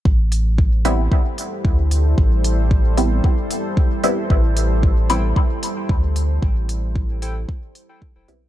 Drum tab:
HH |-o-o-o-o|-o-o-o-o|-o-o-o-o|-o-o-o-o|
BD |o-o-o-o-|o-o-o-o-|o-o-o-o-|o-o-o-o-|